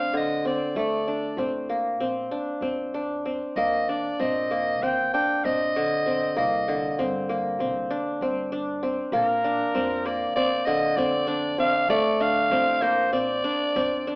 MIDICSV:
0, 0, Header, 1, 4, 480
1, 0, Start_track
1, 0, Tempo, 623053
1, 589, Time_signature, 9, 3, 24, 8
1, 4673, Tempo, 616016
1, 10975, End_track
2, 0, Start_track
2, 0, Title_t, "Soprano saxophone"
2, 0, Program_c, 0, 64
2, 0, Note_on_c, 0, 77, 79
2, 113, Note_off_c, 0, 77, 0
2, 128, Note_on_c, 0, 75, 78
2, 342, Note_off_c, 0, 75, 0
2, 361, Note_on_c, 0, 74, 67
2, 577, Note_off_c, 0, 74, 0
2, 607, Note_on_c, 0, 74, 67
2, 1103, Note_off_c, 0, 74, 0
2, 2742, Note_on_c, 0, 75, 68
2, 2997, Note_on_c, 0, 74, 75
2, 3009, Note_off_c, 0, 75, 0
2, 3239, Note_on_c, 0, 75, 78
2, 3250, Note_off_c, 0, 74, 0
2, 3718, Note_on_c, 0, 79, 86
2, 3730, Note_off_c, 0, 75, 0
2, 3950, Note_off_c, 0, 79, 0
2, 3955, Note_on_c, 0, 79, 81
2, 4192, Note_on_c, 0, 75, 87
2, 4203, Note_off_c, 0, 79, 0
2, 4910, Note_off_c, 0, 75, 0
2, 4918, Note_on_c, 0, 75, 73
2, 5423, Note_off_c, 0, 75, 0
2, 7076, Note_on_c, 0, 70, 75
2, 7786, Note_on_c, 0, 74, 71
2, 7798, Note_off_c, 0, 70, 0
2, 8010, Note_off_c, 0, 74, 0
2, 8014, Note_on_c, 0, 74, 95
2, 8250, Note_on_c, 0, 75, 87
2, 8262, Note_off_c, 0, 74, 0
2, 8490, Note_on_c, 0, 74, 89
2, 8502, Note_off_c, 0, 75, 0
2, 8974, Note_off_c, 0, 74, 0
2, 8983, Note_on_c, 0, 77, 95
2, 9204, Note_off_c, 0, 77, 0
2, 9218, Note_on_c, 0, 74, 95
2, 9462, Note_on_c, 0, 77, 94
2, 9474, Note_off_c, 0, 74, 0
2, 9936, Note_on_c, 0, 72, 75
2, 9948, Note_off_c, 0, 77, 0
2, 10174, Note_off_c, 0, 72, 0
2, 10179, Note_on_c, 0, 74, 95
2, 10975, Note_off_c, 0, 74, 0
2, 10975, End_track
3, 0, Start_track
3, 0, Title_t, "Qanun"
3, 0, Program_c, 1, 107
3, 0, Note_on_c, 1, 58, 61
3, 0, Note_on_c, 1, 60, 66
3, 0, Note_on_c, 1, 62, 74
3, 104, Note_on_c, 1, 50, 71
3, 345, Note_off_c, 1, 60, 0
3, 348, Note_on_c, 1, 60, 66
3, 479, Note_off_c, 1, 58, 0
3, 587, Note_on_c, 1, 57, 73
3, 627, Note_off_c, 1, 50, 0
3, 778, Note_off_c, 1, 62, 0
3, 829, Note_on_c, 1, 62, 62
3, 1061, Note_off_c, 1, 60, 0
3, 1065, Note_on_c, 1, 60, 70
3, 1306, Note_on_c, 1, 58, 59
3, 1352, Note_off_c, 1, 57, 0
3, 1541, Note_off_c, 1, 60, 0
3, 1544, Note_on_c, 1, 60, 73
3, 1779, Note_off_c, 1, 62, 0
3, 1782, Note_on_c, 1, 62, 69
3, 2017, Note_off_c, 1, 60, 0
3, 2020, Note_on_c, 1, 60, 68
3, 2264, Note_off_c, 1, 62, 0
3, 2268, Note_on_c, 1, 62, 70
3, 2505, Note_off_c, 1, 60, 0
3, 2508, Note_on_c, 1, 60, 59
3, 2627, Note_off_c, 1, 58, 0
3, 2753, Note_on_c, 1, 58, 77
3, 2994, Note_off_c, 1, 62, 0
3, 2997, Note_on_c, 1, 62, 61
3, 3229, Note_off_c, 1, 60, 0
3, 3232, Note_on_c, 1, 60, 70
3, 3471, Note_off_c, 1, 58, 0
3, 3474, Note_on_c, 1, 58, 64
3, 3716, Note_off_c, 1, 60, 0
3, 3720, Note_on_c, 1, 60, 63
3, 3956, Note_off_c, 1, 62, 0
3, 3959, Note_on_c, 1, 62, 67
3, 4195, Note_off_c, 1, 60, 0
3, 4198, Note_on_c, 1, 60, 67
3, 4439, Note_on_c, 1, 50, 69
3, 4667, Note_off_c, 1, 60, 0
3, 4670, Note_on_c, 1, 60, 67
3, 4796, Note_off_c, 1, 58, 0
3, 4905, Note_on_c, 1, 58, 74
3, 4951, Note_off_c, 1, 50, 0
3, 5115, Note_off_c, 1, 62, 0
3, 5152, Note_on_c, 1, 50, 67
3, 5389, Note_off_c, 1, 60, 0
3, 5392, Note_on_c, 1, 60, 74
3, 5627, Note_off_c, 1, 58, 0
3, 5630, Note_on_c, 1, 58, 65
3, 5867, Note_off_c, 1, 60, 0
3, 5870, Note_on_c, 1, 60, 68
3, 6106, Note_on_c, 1, 62, 76
3, 6351, Note_off_c, 1, 60, 0
3, 6354, Note_on_c, 1, 60, 72
3, 6583, Note_off_c, 1, 62, 0
3, 6586, Note_on_c, 1, 62, 76
3, 6773, Note_off_c, 1, 50, 0
3, 6822, Note_off_c, 1, 60, 0
3, 6825, Note_on_c, 1, 60, 67
3, 6966, Note_off_c, 1, 58, 0
3, 7061, Note_on_c, 1, 58, 82
3, 7302, Note_off_c, 1, 62, 0
3, 7305, Note_on_c, 1, 62, 67
3, 7538, Note_off_c, 1, 60, 0
3, 7541, Note_on_c, 1, 60, 77
3, 7779, Note_off_c, 1, 58, 0
3, 7782, Note_on_c, 1, 58, 68
3, 8021, Note_off_c, 1, 60, 0
3, 8024, Note_on_c, 1, 60, 77
3, 8260, Note_on_c, 1, 50, 73
3, 8468, Note_off_c, 1, 62, 0
3, 8497, Note_off_c, 1, 60, 0
3, 8501, Note_on_c, 1, 60, 78
3, 8730, Note_on_c, 1, 62, 79
3, 8968, Note_off_c, 1, 60, 0
3, 8971, Note_on_c, 1, 60, 72
3, 9118, Note_off_c, 1, 58, 0
3, 9217, Note_on_c, 1, 57, 93
3, 9257, Note_off_c, 1, 50, 0
3, 9452, Note_off_c, 1, 62, 0
3, 9455, Note_on_c, 1, 62, 71
3, 9695, Note_off_c, 1, 60, 0
3, 9698, Note_on_c, 1, 60, 75
3, 9936, Note_on_c, 1, 58, 73
3, 9982, Note_off_c, 1, 57, 0
3, 10172, Note_off_c, 1, 60, 0
3, 10175, Note_on_c, 1, 60, 74
3, 10417, Note_off_c, 1, 62, 0
3, 10420, Note_on_c, 1, 62, 76
3, 10665, Note_off_c, 1, 60, 0
3, 10668, Note_on_c, 1, 60, 80
3, 10909, Note_off_c, 1, 62, 0
3, 10912, Note_on_c, 1, 62, 74
3, 10975, Note_off_c, 1, 58, 0
3, 10975, Note_off_c, 1, 60, 0
3, 10975, Note_off_c, 1, 62, 0
3, 10975, End_track
4, 0, Start_track
4, 0, Title_t, "Upright bass"
4, 0, Program_c, 2, 32
4, 0, Note_on_c, 2, 38, 70
4, 460, Note_off_c, 2, 38, 0
4, 580, Note_on_c, 2, 38, 82
4, 975, Note_off_c, 2, 38, 0
4, 1055, Note_on_c, 2, 33, 72
4, 1533, Note_off_c, 2, 33, 0
4, 1533, Note_on_c, 2, 34, 63
4, 1734, Note_off_c, 2, 34, 0
4, 2010, Note_on_c, 2, 41, 69
4, 2612, Note_off_c, 2, 41, 0
4, 2741, Note_on_c, 2, 39, 91
4, 3141, Note_off_c, 2, 39, 0
4, 3233, Note_on_c, 2, 34, 76
4, 3712, Note_off_c, 2, 34, 0
4, 3712, Note_on_c, 2, 39, 69
4, 3910, Note_off_c, 2, 39, 0
4, 4196, Note_on_c, 2, 34, 71
4, 4783, Note_off_c, 2, 34, 0
4, 4906, Note_on_c, 2, 36, 85
4, 5302, Note_off_c, 2, 36, 0
4, 5397, Note_on_c, 2, 43, 80
4, 5861, Note_on_c, 2, 36, 73
4, 5873, Note_off_c, 2, 43, 0
4, 6061, Note_off_c, 2, 36, 0
4, 6343, Note_on_c, 2, 43, 75
4, 6936, Note_off_c, 2, 43, 0
4, 7054, Note_on_c, 2, 34, 95
4, 7452, Note_off_c, 2, 34, 0
4, 7548, Note_on_c, 2, 41, 84
4, 8018, Note_off_c, 2, 41, 0
4, 8018, Note_on_c, 2, 34, 85
4, 8216, Note_off_c, 2, 34, 0
4, 8485, Note_on_c, 2, 41, 74
4, 9081, Note_off_c, 2, 41, 0
4, 9207, Note_on_c, 2, 38, 86
4, 9605, Note_off_c, 2, 38, 0
4, 9690, Note_on_c, 2, 33, 89
4, 10177, Note_off_c, 2, 33, 0
4, 10177, Note_on_c, 2, 34, 91
4, 10377, Note_off_c, 2, 34, 0
4, 10666, Note_on_c, 2, 41, 85
4, 10975, Note_off_c, 2, 41, 0
4, 10975, End_track
0, 0, End_of_file